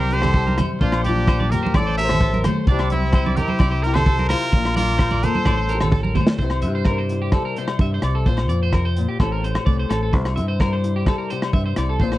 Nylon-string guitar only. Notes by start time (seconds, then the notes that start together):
Already playing: C3 G3 E4 C5
0.12 G4
0.35 C3 G4
0.60 E4
0.82 A#2 A#3 C4
1.09 F4
1.54 A#3
1.78 A2 A4
2.00 G4
2.47 A3
2.69 C3 G3 E4 G4 C5
2.93 G3
3.39 muted nylon-string guitar stroke
3.64 E4
3.86 E4
3.98 G4
4.09 C3 G4
4.32 E4
4.56 A#2 F4
4.78 F4
5.26 A#3
5.50 A2, muted nylon-string guitar stroke
5.75 G4
6.19 A3
6.42 C3 E4 G4 C5
6.68 E4
6.89 G3 C5
7.12 E4
7.36 G4
7.58 C3 C5
7.82 G4
8.27 A#2 C4 F4 C5
8.50 C4
8.75 C3
8.98 A#2
9.20 A2 C4 G4 A4
9.44 C4
9.66 A3 A4
9.90 C4
10.13 C3 E4 G4 C5
10.38 E4
10.61 G3 C5
10.84 E4
11.09 G4
11.32 C3, muted nylon-string guitar stroke
11.55 G4
11.78 E4
12.01 A#2 C4 F4 C5